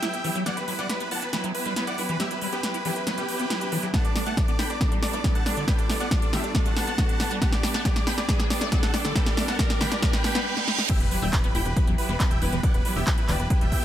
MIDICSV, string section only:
0, 0, Header, 1, 2, 480
1, 0, Start_track
1, 0, Key_signature, 1, "minor"
1, 0, Tempo, 434783
1, 509, Time_signature, 4, 2, 24, 8
1, 15289, End_track
2, 0, Start_track
2, 0, Title_t, "String section"
2, 0, Program_c, 0, 48
2, 29, Note_on_c, 0, 54, 88
2, 29, Note_on_c, 0, 59, 85
2, 29, Note_on_c, 0, 64, 91
2, 29, Note_on_c, 0, 67, 86
2, 197, Note_off_c, 0, 54, 0
2, 197, Note_off_c, 0, 59, 0
2, 197, Note_off_c, 0, 64, 0
2, 197, Note_off_c, 0, 67, 0
2, 268, Note_on_c, 0, 54, 92
2, 268, Note_on_c, 0, 59, 89
2, 268, Note_on_c, 0, 64, 92
2, 268, Note_on_c, 0, 67, 88
2, 436, Note_off_c, 0, 59, 0
2, 437, Note_off_c, 0, 54, 0
2, 437, Note_off_c, 0, 64, 0
2, 437, Note_off_c, 0, 67, 0
2, 507, Note_on_c, 0, 54, 87
2, 507, Note_on_c, 0, 59, 90
2, 507, Note_on_c, 0, 64, 86
2, 507, Note_on_c, 0, 67, 92
2, 675, Note_off_c, 0, 64, 0
2, 676, Note_off_c, 0, 54, 0
2, 676, Note_off_c, 0, 59, 0
2, 676, Note_off_c, 0, 67, 0
2, 745, Note_on_c, 0, 59, 83
2, 746, Note_on_c, 0, 54, 85
2, 746, Note_on_c, 0, 64, 81
2, 746, Note_on_c, 0, 67, 82
2, 915, Note_off_c, 0, 54, 0
2, 915, Note_off_c, 0, 59, 0
2, 915, Note_off_c, 0, 64, 0
2, 915, Note_off_c, 0, 67, 0
2, 987, Note_on_c, 0, 64, 84
2, 988, Note_on_c, 0, 54, 80
2, 988, Note_on_c, 0, 59, 85
2, 988, Note_on_c, 0, 67, 84
2, 1155, Note_off_c, 0, 64, 0
2, 1156, Note_off_c, 0, 54, 0
2, 1156, Note_off_c, 0, 59, 0
2, 1156, Note_off_c, 0, 67, 0
2, 1227, Note_on_c, 0, 64, 85
2, 1228, Note_on_c, 0, 54, 88
2, 1229, Note_on_c, 0, 59, 91
2, 1229, Note_on_c, 0, 67, 87
2, 1396, Note_off_c, 0, 64, 0
2, 1397, Note_off_c, 0, 54, 0
2, 1397, Note_off_c, 0, 59, 0
2, 1397, Note_off_c, 0, 67, 0
2, 1469, Note_on_c, 0, 59, 90
2, 1469, Note_on_c, 0, 64, 89
2, 1469, Note_on_c, 0, 67, 88
2, 1470, Note_on_c, 0, 54, 90
2, 1637, Note_off_c, 0, 59, 0
2, 1637, Note_off_c, 0, 64, 0
2, 1637, Note_off_c, 0, 67, 0
2, 1638, Note_off_c, 0, 54, 0
2, 1707, Note_on_c, 0, 59, 87
2, 1708, Note_on_c, 0, 54, 87
2, 1708, Note_on_c, 0, 64, 91
2, 1709, Note_on_c, 0, 67, 90
2, 1876, Note_off_c, 0, 59, 0
2, 1876, Note_off_c, 0, 64, 0
2, 1877, Note_off_c, 0, 54, 0
2, 1877, Note_off_c, 0, 67, 0
2, 1949, Note_on_c, 0, 54, 91
2, 1949, Note_on_c, 0, 59, 90
2, 1949, Note_on_c, 0, 64, 92
2, 1950, Note_on_c, 0, 67, 89
2, 2117, Note_off_c, 0, 54, 0
2, 2117, Note_off_c, 0, 59, 0
2, 2117, Note_off_c, 0, 64, 0
2, 2118, Note_off_c, 0, 67, 0
2, 2187, Note_on_c, 0, 59, 88
2, 2187, Note_on_c, 0, 67, 84
2, 2188, Note_on_c, 0, 54, 87
2, 2188, Note_on_c, 0, 64, 88
2, 2355, Note_off_c, 0, 67, 0
2, 2356, Note_off_c, 0, 54, 0
2, 2356, Note_off_c, 0, 59, 0
2, 2356, Note_off_c, 0, 64, 0
2, 2425, Note_on_c, 0, 67, 90
2, 2426, Note_on_c, 0, 54, 89
2, 2426, Note_on_c, 0, 64, 91
2, 2427, Note_on_c, 0, 59, 91
2, 2594, Note_off_c, 0, 67, 0
2, 2595, Note_off_c, 0, 54, 0
2, 2595, Note_off_c, 0, 64, 0
2, 2596, Note_off_c, 0, 59, 0
2, 2667, Note_on_c, 0, 59, 83
2, 2667, Note_on_c, 0, 64, 89
2, 2667, Note_on_c, 0, 67, 86
2, 2668, Note_on_c, 0, 54, 82
2, 2836, Note_off_c, 0, 54, 0
2, 2836, Note_off_c, 0, 59, 0
2, 2836, Note_off_c, 0, 64, 0
2, 2836, Note_off_c, 0, 67, 0
2, 2905, Note_on_c, 0, 67, 86
2, 2906, Note_on_c, 0, 54, 80
2, 2906, Note_on_c, 0, 59, 85
2, 2906, Note_on_c, 0, 64, 82
2, 3074, Note_off_c, 0, 67, 0
2, 3075, Note_off_c, 0, 54, 0
2, 3075, Note_off_c, 0, 59, 0
2, 3075, Note_off_c, 0, 64, 0
2, 3149, Note_on_c, 0, 54, 90
2, 3149, Note_on_c, 0, 64, 91
2, 3150, Note_on_c, 0, 67, 89
2, 3151, Note_on_c, 0, 59, 89
2, 3317, Note_off_c, 0, 54, 0
2, 3317, Note_off_c, 0, 64, 0
2, 3318, Note_off_c, 0, 59, 0
2, 3318, Note_off_c, 0, 67, 0
2, 3388, Note_on_c, 0, 59, 86
2, 3388, Note_on_c, 0, 64, 87
2, 3389, Note_on_c, 0, 54, 91
2, 3389, Note_on_c, 0, 67, 93
2, 3557, Note_off_c, 0, 54, 0
2, 3557, Note_off_c, 0, 59, 0
2, 3557, Note_off_c, 0, 64, 0
2, 3557, Note_off_c, 0, 67, 0
2, 3632, Note_on_c, 0, 54, 87
2, 3632, Note_on_c, 0, 59, 88
2, 3632, Note_on_c, 0, 67, 88
2, 3633, Note_on_c, 0, 64, 84
2, 3799, Note_off_c, 0, 54, 0
2, 3799, Note_off_c, 0, 59, 0
2, 3799, Note_off_c, 0, 67, 0
2, 3800, Note_off_c, 0, 64, 0
2, 3871, Note_on_c, 0, 54, 89
2, 3871, Note_on_c, 0, 64, 90
2, 3871, Note_on_c, 0, 67, 92
2, 3872, Note_on_c, 0, 59, 89
2, 4038, Note_off_c, 0, 54, 0
2, 4038, Note_off_c, 0, 64, 0
2, 4039, Note_off_c, 0, 59, 0
2, 4039, Note_off_c, 0, 67, 0
2, 4109, Note_on_c, 0, 59, 89
2, 4110, Note_on_c, 0, 54, 88
2, 4110, Note_on_c, 0, 67, 89
2, 4111, Note_on_c, 0, 64, 85
2, 4277, Note_off_c, 0, 54, 0
2, 4277, Note_off_c, 0, 59, 0
2, 4278, Note_off_c, 0, 64, 0
2, 4278, Note_off_c, 0, 67, 0
2, 4348, Note_on_c, 0, 59, 93
2, 4348, Note_on_c, 0, 62, 91
2, 4349, Note_on_c, 0, 55, 89
2, 4349, Note_on_c, 0, 69, 90
2, 4516, Note_off_c, 0, 59, 0
2, 4516, Note_off_c, 0, 62, 0
2, 4517, Note_off_c, 0, 55, 0
2, 4517, Note_off_c, 0, 69, 0
2, 4590, Note_on_c, 0, 55, 88
2, 4590, Note_on_c, 0, 59, 86
2, 4590, Note_on_c, 0, 62, 86
2, 4590, Note_on_c, 0, 69, 83
2, 4757, Note_off_c, 0, 55, 0
2, 4757, Note_off_c, 0, 62, 0
2, 4757, Note_off_c, 0, 69, 0
2, 4758, Note_off_c, 0, 59, 0
2, 4830, Note_on_c, 0, 55, 84
2, 4830, Note_on_c, 0, 59, 82
2, 4830, Note_on_c, 0, 62, 87
2, 4830, Note_on_c, 0, 69, 87
2, 4997, Note_off_c, 0, 55, 0
2, 4997, Note_off_c, 0, 69, 0
2, 4998, Note_off_c, 0, 59, 0
2, 4998, Note_off_c, 0, 62, 0
2, 5069, Note_on_c, 0, 59, 88
2, 5070, Note_on_c, 0, 62, 89
2, 5071, Note_on_c, 0, 55, 92
2, 5072, Note_on_c, 0, 69, 87
2, 5237, Note_off_c, 0, 59, 0
2, 5238, Note_off_c, 0, 55, 0
2, 5238, Note_off_c, 0, 62, 0
2, 5239, Note_off_c, 0, 69, 0
2, 5310, Note_on_c, 0, 59, 91
2, 5310, Note_on_c, 0, 62, 94
2, 5310, Note_on_c, 0, 69, 95
2, 5311, Note_on_c, 0, 55, 91
2, 5478, Note_off_c, 0, 55, 0
2, 5478, Note_off_c, 0, 59, 0
2, 5478, Note_off_c, 0, 62, 0
2, 5478, Note_off_c, 0, 69, 0
2, 5548, Note_on_c, 0, 59, 87
2, 5548, Note_on_c, 0, 62, 87
2, 5549, Note_on_c, 0, 55, 88
2, 5549, Note_on_c, 0, 69, 87
2, 5716, Note_off_c, 0, 59, 0
2, 5716, Note_off_c, 0, 62, 0
2, 5717, Note_off_c, 0, 55, 0
2, 5717, Note_off_c, 0, 69, 0
2, 5787, Note_on_c, 0, 55, 93
2, 5788, Note_on_c, 0, 69, 91
2, 5789, Note_on_c, 0, 59, 91
2, 5789, Note_on_c, 0, 62, 91
2, 5956, Note_off_c, 0, 55, 0
2, 5956, Note_off_c, 0, 69, 0
2, 5957, Note_off_c, 0, 59, 0
2, 5957, Note_off_c, 0, 62, 0
2, 6028, Note_on_c, 0, 55, 88
2, 6028, Note_on_c, 0, 59, 87
2, 6028, Note_on_c, 0, 69, 88
2, 6029, Note_on_c, 0, 62, 89
2, 6196, Note_off_c, 0, 59, 0
2, 6197, Note_off_c, 0, 55, 0
2, 6197, Note_off_c, 0, 62, 0
2, 6197, Note_off_c, 0, 69, 0
2, 6267, Note_on_c, 0, 62, 90
2, 6268, Note_on_c, 0, 55, 89
2, 6268, Note_on_c, 0, 59, 93
2, 6268, Note_on_c, 0, 69, 92
2, 6436, Note_off_c, 0, 55, 0
2, 6436, Note_off_c, 0, 62, 0
2, 6436, Note_off_c, 0, 69, 0
2, 6437, Note_off_c, 0, 59, 0
2, 6509, Note_on_c, 0, 55, 85
2, 6509, Note_on_c, 0, 59, 86
2, 6509, Note_on_c, 0, 62, 88
2, 6509, Note_on_c, 0, 69, 89
2, 6677, Note_off_c, 0, 55, 0
2, 6677, Note_off_c, 0, 59, 0
2, 6677, Note_off_c, 0, 62, 0
2, 6677, Note_off_c, 0, 69, 0
2, 6748, Note_on_c, 0, 55, 86
2, 6748, Note_on_c, 0, 59, 84
2, 6748, Note_on_c, 0, 62, 86
2, 6748, Note_on_c, 0, 69, 85
2, 6916, Note_off_c, 0, 55, 0
2, 6916, Note_off_c, 0, 59, 0
2, 6916, Note_off_c, 0, 62, 0
2, 6916, Note_off_c, 0, 69, 0
2, 6987, Note_on_c, 0, 59, 88
2, 6987, Note_on_c, 0, 69, 91
2, 6988, Note_on_c, 0, 55, 93
2, 6988, Note_on_c, 0, 62, 93
2, 7156, Note_off_c, 0, 55, 0
2, 7156, Note_off_c, 0, 59, 0
2, 7156, Note_off_c, 0, 62, 0
2, 7156, Note_off_c, 0, 69, 0
2, 7227, Note_on_c, 0, 62, 92
2, 7227, Note_on_c, 0, 69, 92
2, 7228, Note_on_c, 0, 55, 91
2, 7228, Note_on_c, 0, 59, 93
2, 7395, Note_off_c, 0, 62, 0
2, 7396, Note_off_c, 0, 55, 0
2, 7396, Note_off_c, 0, 59, 0
2, 7396, Note_off_c, 0, 69, 0
2, 7470, Note_on_c, 0, 62, 88
2, 7471, Note_on_c, 0, 55, 89
2, 7471, Note_on_c, 0, 59, 90
2, 7471, Note_on_c, 0, 69, 90
2, 7638, Note_off_c, 0, 55, 0
2, 7638, Note_off_c, 0, 59, 0
2, 7638, Note_off_c, 0, 62, 0
2, 7638, Note_off_c, 0, 69, 0
2, 7707, Note_on_c, 0, 69, 92
2, 7708, Note_on_c, 0, 59, 94
2, 7708, Note_on_c, 0, 62, 93
2, 7709, Note_on_c, 0, 55, 96
2, 7876, Note_off_c, 0, 59, 0
2, 7876, Note_off_c, 0, 69, 0
2, 7877, Note_off_c, 0, 55, 0
2, 7877, Note_off_c, 0, 62, 0
2, 7947, Note_on_c, 0, 59, 94
2, 7948, Note_on_c, 0, 55, 89
2, 7948, Note_on_c, 0, 62, 92
2, 7949, Note_on_c, 0, 69, 89
2, 8116, Note_off_c, 0, 55, 0
2, 8116, Note_off_c, 0, 59, 0
2, 8116, Note_off_c, 0, 62, 0
2, 8117, Note_off_c, 0, 69, 0
2, 8188, Note_on_c, 0, 55, 94
2, 8189, Note_on_c, 0, 59, 94
2, 8189, Note_on_c, 0, 62, 92
2, 8189, Note_on_c, 0, 67, 95
2, 8356, Note_off_c, 0, 55, 0
2, 8357, Note_off_c, 0, 59, 0
2, 8357, Note_off_c, 0, 62, 0
2, 8357, Note_off_c, 0, 67, 0
2, 8428, Note_on_c, 0, 62, 87
2, 8429, Note_on_c, 0, 55, 88
2, 8429, Note_on_c, 0, 59, 89
2, 8429, Note_on_c, 0, 67, 89
2, 8597, Note_off_c, 0, 55, 0
2, 8597, Note_off_c, 0, 59, 0
2, 8597, Note_off_c, 0, 62, 0
2, 8597, Note_off_c, 0, 67, 0
2, 8668, Note_on_c, 0, 55, 84
2, 8668, Note_on_c, 0, 59, 90
2, 8669, Note_on_c, 0, 62, 82
2, 8669, Note_on_c, 0, 67, 89
2, 8836, Note_off_c, 0, 55, 0
2, 8837, Note_off_c, 0, 59, 0
2, 8837, Note_off_c, 0, 62, 0
2, 8837, Note_off_c, 0, 67, 0
2, 8908, Note_on_c, 0, 59, 93
2, 8909, Note_on_c, 0, 55, 93
2, 8909, Note_on_c, 0, 62, 88
2, 8909, Note_on_c, 0, 67, 90
2, 9077, Note_off_c, 0, 55, 0
2, 9077, Note_off_c, 0, 59, 0
2, 9077, Note_off_c, 0, 62, 0
2, 9077, Note_off_c, 0, 67, 0
2, 9149, Note_on_c, 0, 59, 93
2, 9149, Note_on_c, 0, 62, 93
2, 9150, Note_on_c, 0, 55, 91
2, 9150, Note_on_c, 0, 67, 93
2, 9317, Note_off_c, 0, 59, 0
2, 9317, Note_off_c, 0, 62, 0
2, 9318, Note_off_c, 0, 55, 0
2, 9318, Note_off_c, 0, 67, 0
2, 9390, Note_on_c, 0, 55, 91
2, 9390, Note_on_c, 0, 67, 93
2, 9391, Note_on_c, 0, 59, 92
2, 9391, Note_on_c, 0, 62, 89
2, 9558, Note_off_c, 0, 55, 0
2, 9558, Note_off_c, 0, 59, 0
2, 9558, Note_off_c, 0, 62, 0
2, 9558, Note_off_c, 0, 67, 0
2, 9629, Note_on_c, 0, 55, 97
2, 9629, Note_on_c, 0, 62, 94
2, 9630, Note_on_c, 0, 59, 89
2, 9630, Note_on_c, 0, 67, 93
2, 9797, Note_off_c, 0, 55, 0
2, 9797, Note_off_c, 0, 59, 0
2, 9797, Note_off_c, 0, 62, 0
2, 9798, Note_off_c, 0, 67, 0
2, 9866, Note_on_c, 0, 62, 91
2, 9867, Note_on_c, 0, 55, 89
2, 9867, Note_on_c, 0, 59, 93
2, 9868, Note_on_c, 0, 67, 91
2, 10035, Note_off_c, 0, 62, 0
2, 10036, Note_off_c, 0, 55, 0
2, 10036, Note_off_c, 0, 59, 0
2, 10036, Note_off_c, 0, 67, 0
2, 10106, Note_on_c, 0, 67, 92
2, 10107, Note_on_c, 0, 55, 96
2, 10107, Note_on_c, 0, 59, 96
2, 10107, Note_on_c, 0, 62, 91
2, 10275, Note_off_c, 0, 55, 0
2, 10275, Note_off_c, 0, 62, 0
2, 10275, Note_off_c, 0, 67, 0
2, 10276, Note_off_c, 0, 59, 0
2, 10348, Note_on_c, 0, 59, 92
2, 10348, Note_on_c, 0, 62, 85
2, 10349, Note_on_c, 0, 55, 90
2, 10349, Note_on_c, 0, 67, 87
2, 10516, Note_off_c, 0, 59, 0
2, 10516, Note_off_c, 0, 62, 0
2, 10517, Note_off_c, 0, 55, 0
2, 10517, Note_off_c, 0, 67, 0
2, 10586, Note_on_c, 0, 62, 86
2, 10587, Note_on_c, 0, 55, 84
2, 10588, Note_on_c, 0, 59, 85
2, 10588, Note_on_c, 0, 67, 85
2, 10755, Note_off_c, 0, 62, 0
2, 10756, Note_off_c, 0, 55, 0
2, 10756, Note_off_c, 0, 59, 0
2, 10756, Note_off_c, 0, 67, 0
2, 10827, Note_on_c, 0, 55, 94
2, 10827, Note_on_c, 0, 62, 91
2, 10827, Note_on_c, 0, 67, 89
2, 10828, Note_on_c, 0, 59, 88
2, 10996, Note_off_c, 0, 55, 0
2, 10996, Note_off_c, 0, 59, 0
2, 10996, Note_off_c, 0, 62, 0
2, 10996, Note_off_c, 0, 67, 0
2, 11067, Note_on_c, 0, 59, 94
2, 11067, Note_on_c, 0, 62, 93
2, 11067, Note_on_c, 0, 67, 93
2, 11068, Note_on_c, 0, 55, 95
2, 11235, Note_off_c, 0, 62, 0
2, 11236, Note_off_c, 0, 55, 0
2, 11236, Note_off_c, 0, 59, 0
2, 11236, Note_off_c, 0, 67, 0
2, 11310, Note_on_c, 0, 55, 91
2, 11310, Note_on_c, 0, 59, 95
2, 11310, Note_on_c, 0, 62, 92
2, 11311, Note_on_c, 0, 67, 89
2, 11478, Note_off_c, 0, 55, 0
2, 11478, Note_off_c, 0, 59, 0
2, 11478, Note_off_c, 0, 62, 0
2, 11478, Note_off_c, 0, 67, 0
2, 12028, Note_on_c, 0, 54, 97
2, 12029, Note_on_c, 0, 59, 95
2, 12030, Note_on_c, 0, 64, 91
2, 12030, Note_on_c, 0, 67, 89
2, 12197, Note_off_c, 0, 54, 0
2, 12197, Note_off_c, 0, 59, 0
2, 12197, Note_off_c, 0, 64, 0
2, 12198, Note_off_c, 0, 67, 0
2, 12267, Note_on_c, 0, 64, 86
2, 12268, Note_on_c, 0, 54, 87
2, 12268, Note_on_c, 0, 59, 82
2, 12268, Note_on_c, 0, 67, 89
2, 12436, Note_off_c, 0, 54, 0
2, 12436, Note_off_c, 0, 59, 0
2, 12436, Note_off_c, 0, 64, 0
2, 12436, Note_off_c, 0, 67, 0
2, 12505, Note_on_c, 0, 54, 86
2, 12506, Note_on_c, 0, 67, 90
2, 12507, Note_on_c, 0, 59, 82
2, 12507, Note_on_c, 0, 64, 87
2, 12675, Note_off_c, 0, 54, 0
2, 12675, Note_off_c, 0, 64, 0
2, 12675, Note_off_c, 0, 67, 0
2, 12676, Note_off_c, 0, 59, 0
2, 12746, Note_on_c, 0, 59, 89
2, 12746, Note_on_c, 0, 64, 91
2, 12746, Note_on_c, 0, 67, 94
2, 12747, Note_on_c, 0, 54, 90
2, 12915, Note_off_c, 0, 54, 0
2, 12915, Note_off_c, 0, 59, 0
2, 12915, Note_off_c, 0, 64, 0
2, 12915, Note_off_c, 0, 67, 0
2, 12986, Note_on_c, 0, 54, 91
2, 12987, Note_on_c, 0, 64, 92
2, 12987, Note_on_c, 0, 67, 93
2, 12988, Note_on_c, 0, 59, 93
2, 13155, Note_off_c, 0, 54, 0
2, 13156, Note_off_c, 0, 59, 0
2, 13156, Note_off_c, 0, 64, 0
2, 13156, Note_off_c, 0, 67, 0
2, 13227, Note_on_c, 0, 59, 91
2, 13227, Note_on_c, 0, 67, 89
2, 13229, Note_on_c, 0, 54, 95
2, 13229, Note_on_c, 0, 64, 95
2, 13396, Note_off_c, 0, 59, 0
2, 13396, Note_off_c, 0, 67, 0
2, 13397, Note_off_c, 0, 54, 0
2, 13397, Note_off_c, 0, 64, 0
2, 13467, Note_on_c, 0, 59, 92
2, 13468, Note_on_c, 0, 54, 90
2, 13468, Note_on_c, 0, 64, 97
2, 13468, Note_on_c, 0, 67, 94
2, 13636, Note_off_c, 0, 54, 0
2, 13636, Note_off_c, 0, 59, 0
2, 13636, Note_off_c, 0, 64, 0
2, 13636, Note_off_c, 0, 67, 0
2, 13705, Note_on_c, 0, 54, 89
2, 13706, Note_on_c, 0, 64, 93
2, 13706, Note_on_c, 0, 67, 92
2, 13707, Note_on_c, 0, 59, 93
2, 13875, Note_off_c, 0, 54, 0
2, 13875, Note_off_c, 0, 64, 0
2, 13875, Note_off_c, 0, 67, 0
2, 13876, Note_off_c, 0, 59, 0
2, 13949, Note_on_c, 0, 64, 90
2, 13950, Note_on_c, 0, 54, 97
2, 13950, Note_on_c, 0, 59, 90
2, 13950, Note_on_c, 0, 67, 94
2, 14117, Note_off_c, 0, 64, 0
2, 14118, Note_off_c, 0, 54, 0
2, 14118, Note_off_c, 0, 59, 0
2, 14118, Note_off_c, 0, 67, 0
2, 14188, Note_on_c, 0, 54, 87
2, 14188, Note_on_c, 0, 59, 86
2, 14188, Note_on_c, 0, 64, 92
2, 14188, Note_on_c, 0, 67, 85
2, 14356, Note_off_c, 0, 54, 0
2, 14356, Note_off_c, 0, 59, 0
2, 14356, Note_off_c, 0, 67, 0
2, 14357, Note_off_c, 0, 64, 0
2, 14429, Note_on_c, 0, 54, 87
2, 14429, Note_on_c, 0, 59, 85
2, 14429, Note_on_c, 0, 64, 85
2, 14430, Note_on_c, 0, 67, 90
2, 14597, Note_off_c, 0, 54, 0
2, 14597, Note_off_c, 0, 59, 0
2, 14597, Note_off_c, 0, 64, 0
2, 14598, Note_off_c, 0, 67, 0
2, 14668, Note_on_c, 0, 67, 94
2, 14669, Note_on_c, 0, 64, 92
2, 14670, Note_on_c, 0, 54, 92
2, 14670, Note_on_c, 0, 59, 90
2, 14837, Note_off_c, 0, 54, 0
2, 14837, Note_off_c, 0, 64, 0
2, 14837, Note_off_c, 0, 67, 0
2, 14838, Note_off_c, 0, 59, 0
2, 14907, Note_on_c, 0, 64, 94
2, 14908, Note_on_c, 0, 54, 96
2, 14908, Note_on_c, 0, 59, 92
2, 14909, Note_on_c, 0, 67, 94
2, 15076, Note_off_c, 0, 54, 0
2, 15076, Note_off_c, 0, 59, 0
2, 15076, Note_off_c, 0, 64, 0
2, 15077, Note_off_c, 0, 67, 0
2, 15148, Note_on_c, 0, 64, 89
2, 15149, Note_on_c, 0, 54, 91
2, 15149, Note_on_c, 0, 67, 91
2, 15150, Note_on_c, 0, 59, 92
2, 15289, Note_off_c, 0, 54, 0
2, 15289, Note_off_c, 0, 59, 0
2, 15289, Note_off_c, 0, 64, 0
2, 15289, Note_off_c, 0, 67, 0
2, 15289, End_track
0, 0, End_of_file